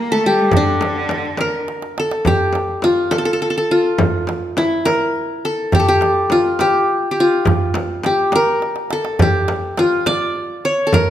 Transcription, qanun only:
Already playing: G4 A#4
0.12 A4
0.26 G4
0.57 D4
1.41 A#4
2.00 A4
2.27 G4
2.84 F4
3.11 A4
3.18 A4
3.25 A4
3.33 A4
3.42 A4
3.50 A4
3.58 A4
3.71 F4
4.58 E4
4.85 A#4
5.45 A4
5.75 G4
5.80 A4
5.88 G4
6.32 F4
6.61 G4
7.11 G4
7.20 F4
8.06 G4
8.36 A#4
8.93 A4
9.22 G4
9.79 F4
10.07 D5
10.65 C#5
10.87 A4
10.94 A#4

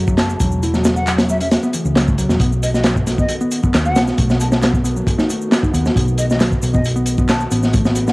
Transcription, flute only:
0.18 A5
0.96 F#5
1.30 E5
1.41 E5
2.63 D#5
2.74 D#5
3.19 D#5
3.85 F#5
4.40 A5
4.52 A5
6.18 D#5
6.29 D#5
6.73 D#5
7.29 A5
8.08 F#5

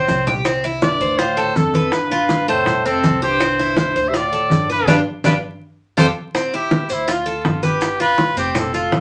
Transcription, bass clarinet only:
Already playing: A2
0.83 G2
1.19 A2
1.55 F2
1.92 G2
2.49 A2
2.85 F2
3.22 G2
3.78 G2
4.08 C3
4.16 A2
4.71 G2
4.88 G2
5.26 G2
5.99 F2

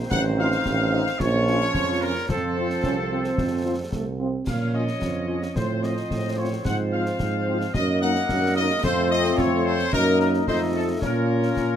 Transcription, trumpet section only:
0.10 F#5
0.38 F5
1.19 C#5
2.02 A#4
2.29 A4
4.47 F5
4.74 D#5
5.56 C5
5.84 D#5
6.38 C#5
6.65 F#5
6.93 F5
7.74 D#5
8.02 F#5
8.57 D#5
8.84 C5
9.11 D#5
9.38 C#5
9.65 C5
9.93 A#4
10.21 A#4
10.48 C5
10.76 A4
11.04 A#4

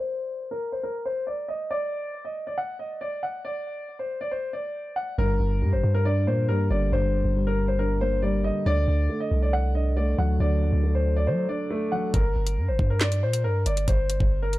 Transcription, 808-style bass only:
5.18 G1
5.40 G1
5.62 G2
5.73 G1
5.83 G2
6.27 A#2
6.49 G2
6.70 G1
6.92 G1
7.25 G1
8.66 D2
8.88 D2
9.31 C2
10.18 D2
10.40 D2
10.62 D#2
10.73 D2
11.27 F#3
12.14 G1
12.36 G1
12.57 G2
12.68 G1
12.79 G2
13.23 A#2
13.44 G2
13.66 G1
13.88 G1
14.20 G1

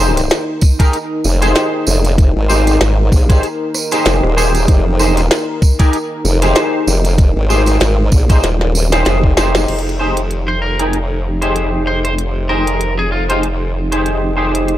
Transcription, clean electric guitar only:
0.00 D#4 G4 G#4 C5
0.79 D#4 G4 G#4 A#4
1.42 D#4 G4 G#4 C5
2.49 D#4 G4 G#4 C5
3.29 D#4 G4 G#4 C5
3.92 D#4 G4 G#4 C5
4.37 D#4 G4 G#4 C5
4.99 D#4 G4 G#4 C5
5.79 D#4 G4 G#4 A#4
6.42 D#4 G4 G#4 C5
7.49 D#4 G4 G#4 C5
8.29 D#4 G4 G#4 C5
8.92 D#4 G4 G#4 C5
9.37 D#4 G4 G#4 C5
9.99 D#4 G4 G#4 C5
10.79 D#4 G4 G#4 A#4
11.42 D#4 G4 G#4 C5
12.49 D#4 G4 G#4 C5
13.29 D#4 G4 G#4 C5
13.92 D#4 G4 G#4 C5
14.37 D#4 G4 G#4 C5

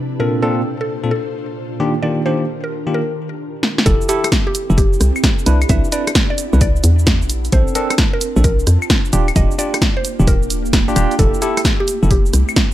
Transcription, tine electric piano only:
0.20 A#2 C4 D4 F4 A4
0.42 A#2 C4 D4 F4 A4
1.04 A#2 C4 D4 F4 A4
1.80 D#3 A#3 D4 F4 G4
2.03 D#3 A#3 D4 F4 G4
2.26 D#3 A#3 D4 F4 G4
2.87 D#3 A#3 D4 F4 G4
3.86 E4 G4 A4
4.09 E4 G4 A4
4.70 E4 G4 A4
5.46 D4 E4 B4
5.69 D4 E4 B4
5.92 D4 E4 B4
6.53 D4 E4 B4
7.53 C4 D4 A4
7.75 C4 D4 A4
8.36 C4 D4 A4
9.13 D4 F4 G4
9.36 D4 F4 G4
9.59 D4 F4 G4
10.20 D4 F4 G4
10.88 D4 F4 G4
10.96 D4 F4 G4
11.19 E4 G4 A4
11.42 E4 G4 A4
12.03 E4 G4 A4

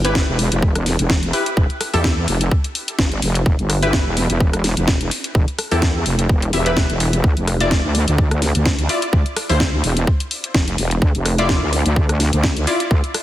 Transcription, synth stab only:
0.05 E4 G4 B4
1.33 E4 G4 B4
1.94 E4 G4 A4
3.82 E4 G4 B4
5.71 E4 G4 A4
6.53 E4 G4 E5
6.66 E4 G4 B4
7.60 E4 F4 D5
8.89 E4 F4 D5
9.49 E4 F4 C5
11.38 E4 F4 D5
12.67 E4 F4 D5

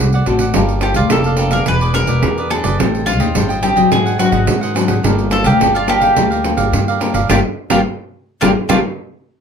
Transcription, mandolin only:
0.83 G4
0.96 F4
1.12 A4
1.53 A#4
1.68 B4
1.95 A#4
2.51 A4
3.06 F4
3.63 G4
3.92 G#4
4.19 F#4
5.32 A4
5.46 G4
5.76 F4
5.89 G4
7.30 F4 G4 A#4
7.70 F4 G4 A#4
8.41 F4 G4 A#4
8.69 F4 G4 A#4

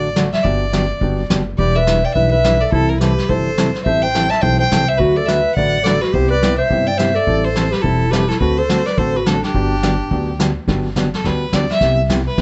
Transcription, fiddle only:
Already playing: D5
0.33 E5
0.43 D5
1.58 D5
1.76 E5
2.05 G5
2.14 E5
2.31 E5
2.61 D5
2.73 A4
2.89 A#4
3.00 B4
3.29 C5
3.84 E5
4.02 G5
4.30 A5
4.42 G5
4.60 G5
4.88 E5
4.98 B4
5.16 D5
5.26 E5
5.55 F#5
5.84 D5
6.02 B4
6.14 C5
6.30 D5
6.59 E5
6.87 G5
6.98 E5
7.16 D5
7.44 C5
7.72 B4
7.81 A4
8.11 B4
8.29 A4
8.39 B4
8.57 C5
8.86 D5
8.98 C5
9.16 B4
9.26 A4
9.44 G4
11.15 A4
11.26 B4
11.55 D5
11.72 E5
12.27 B4

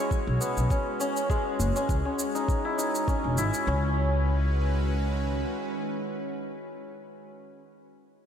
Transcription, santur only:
Already playing: G#3 C#4 E4 C#5
0.41 B3
0.71 C#4
1.00 C#4
1.30 G#3
1.76 C#4
2.05 C#4
2.35 D#4
2.65 E4
2.78 D#4
3.08 C#4
3.38 E4
3.68 C#4

